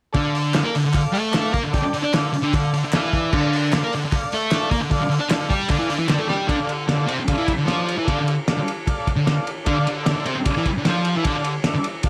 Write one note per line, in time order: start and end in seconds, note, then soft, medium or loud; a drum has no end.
0.13 0.53 D3 medium
0.13 0.54 D4 loud
0.13 0.37 A4 loud
0.13 0.38 D5 medium
0.13 0.38 F5 loud
0.13 kick loud
0.13 open hi-hat medium
0.35 open hi-hat medium
0.54 0.64 D3 medium
0.54 0.78 A4 medium
0.54 0.78 D5 medium
0.54 0.78 F5 medium
0.54 snare loud
0.54 clap medium
0.54 open hi-hat medium
0.63 0.73 A#3 medium
0.63 0.73 A#4 medium
0.75 0.83 D3 medium
0.75 open hi-hat medium
0.85 1.00 D3 medium
0.92 1.17 A4 medium
0.92 1.18 D5 medium
0.92 1.18 F5 medium
0.92 kick loud
0.92 clap medium
0.92 open hi-hat medium
1.12 1.52 A3 medium
1.12 1.53 A4 loud
1.12 open hi-hat medium
1.31 1.56 A4 medium
1.31 1.56 D5 medium
1.31 1.57 F5 medium
1.31 snare loud
1.31 clap loud
1.31 open hi-hat medium
1.53 1.63 A#3 medium
1.53 1.63 A#4 loud
1.53 kick medium
1.53 open hi-hat medium
1.63 1.73 D3 medium
1.71 1.81 D3 medium
1.71 1.96 A4 loud
1.71 1.97 D5 medium
1.71 1.97 G5 loud
1.71 kick loud
1.71 open hi-hat medium
1.83 muted distorted electric guitar stroke medium
1.94 2.04 D3 medium
1.94 open hi-hat medium
2.03 2.12 D4 medium
2.03 2.13 D5 loud
2.13 2.29 D3 medium
2.13 2.37 A4 medium
2.13 2.38 D5 medium
2.13 2.38 F5 medium
2.13 snare loud
2.13 clap medium
2.13 open hi-hat medium
2.33 2.43 A5 medium
2.33 muted distorted electric guitar stroke medium
2.33 open hi-hat medium
2.43 2.52 D3 loud
2.43 2.52 D4 loud
2.43 2.53 G5 medium
2.54 2.69 D3 medium
2.54 2.77 A4 medium
2.54 2.77 D5 medium
2.54 2.78 F5 loud
2.54 kick loud
2.54 clap medium
2.54 open hi-hat medium
2.74 2.83 D3 medium
2.74 open hi-hat medium
2.84 2.93 D3 medium
2.84 2.92 E5 medium
2.92 3.33 E3 medium
2.92 3.33 E4 loud
2.92 3.17 A4 medium
2.92 3.30 D5 medium
2.92 3.18 F5 loud
2.92 snare loud
2.92 clap medium
2.92 open hi-hat medium
3.13 kick medium
3.13 open hi-hat soft
3.31 3.72 D3 medium
3.31 3.72 D4 loud
3.31 3.55 A4 loud
3.31 3.56 D5 loud
3.31 3.57 F5 loud
3.31 kick loud
3.31 crash medium
3.53 open hi-hat medium
3.72 3.82 D3 medium
3.72 3.96 A4 medium
3.72 3.96 D5 medium
3.72 3.96 F5 medium
3.72 snare loud
3.72 clap medium
3.72 open hi-hat medium
3.83 3.92 A#3 medium
3.83 3.92 A#4 loud
3.93 4.03 D3 medium
3.93 open hi-hat medium
4.05 4.19 D3 medium
4.12 4.36 A4 medium
4.12 4.36 D5 medium
4.12 4.37 F5 medium
4.12 kick loud
4.12 clap medium
4.12 open hi-hat medium
4.32 4.70 A3 medium
4.32 4.71 A4 loud
4.32 open hi-hat medium
4.51 4.75 A4 medium
4.51 4.76 D5 medium
4.51 4.76 F5 medium
4.51 snare loud
4.51 clap loud
4.51 open hi-hat medium
4.71 4.80 A#3 medium
4.71 4.80 A#4 loud
4.71 kick medium
4.71 open hi-hat medium
4.81 4.89 D3 medium
4.90 5.00 D3 medium
4.90 5.14 A4 loud
4.90 5.15 D5 loud
4.90 5.15 F5 loud
4.90 kick loud
4.90 open hi-hat medium
5.01 muted distorted electric guitar stroke medium
5.10 5.20 D3 medium
5.10 open hi-hat medium
5.20 5.29 D4 medium
5.20 5.30 D5 medium
5.29 5.45 D3 medium
5.29 5.54 A4 medium
5.29 5.54 D5 medium
5.29 5.54 F5 medium
5.29 snare loud
5.29 clap medium
5.29 open hi-hat medium
5.49 5.69 G3 medium
5.49 5.69 G4 medium
5.49 kick medium
5.49 open hi-hat medium
5.68 5.78 D3 medium
5.68 5.79 D4 medium
5.68 5.93 A4 medium
5.68 5.94 D5 medium
5.68 5.95 F5 medium
5.68 kick loud
5.68 clap medium
5.68 open hi-hat medium
5.79 5.88 E3 medium
5.79 5.89 E4 loud
5.90 5.99 D3 medium
5.90 5.99 D4 medium
5.90 open hi-hat medium
5.99 6.08 E3 medium
5.99 6.08 E4 loud
6.08 6.18 D3 medium
6.08 6.18 D4 loud
6.08 6.33 A4 medium
6.08 6.33 D5 medium
6.08 6.34 G5 medium
6.08 snare loud
6.08 clap loud
6.08 open hi-hat medium
6.19 6.28 A3 medium
6.19 6.29 A4 medium
6.28 6.48 G3 medium
6.28 6.48 G4 loud
6.28 snare medium
6.47 6.56 D3 medium
6.47 6.58 D4 loud
6.47 6.72 A4 loud
6.47 6.73 D5 medium
6.47 6.73 F5 loud
6.47 kick loud
6.47 ride medium
6.57 6.66 D3 medium
6.68 6.84 D3 medium
6.68 ride medium
6.87 6.97 D3 medium
6.87 7.11 A4 medium
6.87 7.12 D5 medium
6.87 7.12 F5 medium
6.87 snare loud
6.87 ride medium
6.98 7.07 D3 medium
7.08 7.17 C3 medium
7.08 7.18 C4 medium
7.08 ride medium
7.19 muted distorted electric guitar stroke medium
7.27 7.52 A4 medium
7.27 7.52 D5 medium
7.27 7.52 F5 medium
7.27 muted distorted electric guitar stroke medium
7.27 kick loud
7.27 ride loud
7.38 7.47 E3 medium
7.38 7.48 E4 medium
7.47 muted distorted electric guitar stroke medium
7.47 kick medium
7.47 ride medium
7.58 7.66 D3 medium
7.65 7.96 F3 loud
7.65 7.97 F4 loud
7.65 7.90 A4 medium
7.65 7.91 D5 medium
7.65 7.91 F5 medium
7.65 snare loud
7.65 ride medium
7.88 ride medium
7.97 8.07 E3 medium
7.97 8.07 E4 loud
8.04 8.17 D3 loud
8.04 8.30 A4 loud
8.04 8.30 D5 medium
8.04 8.31 F5 loud
8.04 kick loud
8.04 ride medium
8.09 8.18 D4 loud
8.18 8.34 D3 medium
8.28 ride medium
8.48 8.71 A4 medium
8.48 8.72 D5 medium
8.48 8.72 F5 medium
8.48 snare loud
8.48 ride medium
8.57 muted distorted electric guitar stroke medium
8.68 ride medium
8.86 9.10 A4 medium
8.86 9.11 D5 medium
8.86 9.12 F5 medium
8.86 kick loud
8.86 ride medium
9.07 kick medium
9.07 ride medium
9.16 9.32 D3 medium
9.25 9.50 A4 medium
9.25 9.50 D5 medium
9.25 9.50 F5 medium
9.25 snare loud
9.25 ride medium
9.47 ride medium
9.65 9.76 D3 medium
9.65 9.76 D4 loud
9.65 9.89 A4 medium
9.65 9.89 D5 medium
9.65 9.90 F5 loud
9.65 kick medium
9.65 ride medium
9.77 9.86 D3 medium
9.87 10.03 D3 medium
9.87 ride medium
10.03 10.28 A4 medium
10.03 10.28 D5 medium
10.03 10.29 E5 medium
10.03 snare loud
10.03 ride medium
10.07 10.15 D3 medium
10.17 10.26 D3 medium
10.26 10.36 C3 medium
10.26 10.36 C4 loud
10.26 ride medium
10.37 muted distorted electric guitar stroke medium
10.43 10.68 A4 medium
10.43 10.69 D5 medium
10.43 10.69 F5 medium
10.43 muted distorted electric guitar stroke medium
10.43 kick loud
10.43 ride medium
10.57 10.66 E3 medium
10.57 10.66 E4 medium
10.66 muted distorted electric guitar stroke medium
10.66 kick medium
10.66 ride medium
10.77 10.86 D3 medium
10.84 11.16 F3 medium
10.84 11.08 A4 medium
10.84 11.09 D5 medium
10.84 11.09 F5 medium
10.84 snare loud
10.84 ride medium
10.89 11.16 F4 loud
11.05 ride medium
11.16 11.25 E3 medium
11.16 11.25 E4 medium
11.22 11.47 A4 loud
11.22 11.48 D5 loud
11.22 11.48 F5 loud
11.22 kick loud
11.22 ride medium
11.27 11.35 D3 loud
11.27 11.35 D4 loud
11.36 11.51 D3 medium
11.44 ride medium
11.64 11.88 A4 medium
11.64 11.89 D5 medium
11.64 11.89 E5 medium
11.64 snare loud
11.64 ride medium
11.75 muted distorted electric guitar stroke medium
11.84 ride medium
12.03 12.09 A4 medium
12.03 12.09 D5 medium
12.03 12.09 F5 medium
12.03 kick loud
12.03 ride medium